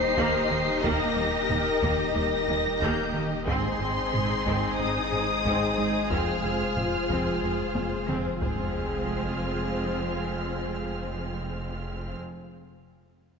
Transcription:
Already playing: D#1 A#3 D#4 G4 C5 D#5 C7
0.17 D#2 D#3 A#3, taiko
0.50 D#2 D#3 A#3
0.83 D#2 D#3 A#3 A#4 A#6, taiko
1.16 D#2 G3 A#3
1.49 D#2 A#3 D#4, taiko low-mid
1.82 D#2 D#3 A#3, taiko
2.15 D#2 G3 A#3 A#4 A#6
2.48 D#2 G3 A#3
2.80 D#2 D#3 A#3 G4 G6, taiko
3.14 D#2 D#3 A#3
3.47 G#1 G#2 G#3 C4 D#4 G#4 C5 D#5 C6, taiko
3.80 G#1 G#2 C4
4.13 G#1 G#2 C4 G#4, taiko low-mid
4.46 G#1 G#2 G#3 C4, taiko
4.79 G#1 G#2 C4 D#4 D#6
5.12 G#1 G#2 C4
5.45 G#1 G#2 G#3 C4, taiko
5.78 G#1 G#2 G#3 C4 D#4
6.10 F1 F2 F3 C4 F4 C5 F6, taiko
6.44 F1 F2 G#3 C4
6.77 F1 F2 C4 F4, taiko low-mid
7.09 F1 F2 F3 C4, taiko
7.43 F1 F2 G#3 C4
7.75 F1 F2 G#3 C4, taiko high
8.09 F1 F2 F3 C4, taiko mid
8.42 F1 F2 G#3 C4 F4 G#4 C5 F6, taiko, sub drop

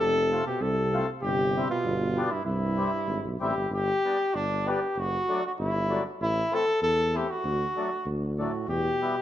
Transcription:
Already playing: C3
0.00 F1 A4
0.31 A3 C4 F4
0.45 B2 G4
0.60 C2 C3 A4
0.93 A3 C4 F4
1.22 G1 C3 G4
1.57 G3 C4 E4
1.69 B2 F4
1.84 G1
2.17 G3 B3 D4
2.31 G2 E4
2.45 C2 G2 E4
2.78 G3 C4 E4
3.07 G#1
3.25 B1
3.40 A1 G3 C4 E4 G4
3.56 G1
3.71 G1 G4
4.04 G3 B3 D4
4.35 G1 D4
4.66 G3 B3 D4 G4
4.96 F#1 F#4
5.28 F#3 A3 D4
5.46 F#4
5.59 G1 E4
5.89 F#3 A3 D4
6.21 A1 E4
6.51 E3 A3 C4 A4
6.82 E2 A4
7.14 E3 A3 C4 G4
7.30 F#4
7.44 D2
7.76 F#3 A3 D4
8.05 D2
8.38 A2 F#3 A3 D4 F#4
8.68 E2 B2 G4
9.01 G3 B3 E4

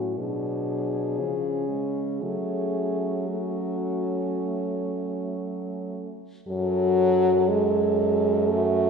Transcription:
Already playing: A2 F#3 C#4 F#4
0.17 B2 F#3 D4 G#4
1.18 C#3 F3 C#4
1.69 G#3
2.21 F#3 A3 C#4 G#4
3.28 A3 C#4 F#4
6.47 F#2 F#3 A4 C#5
7.49 G#3
8.49 A3 F#4 A4

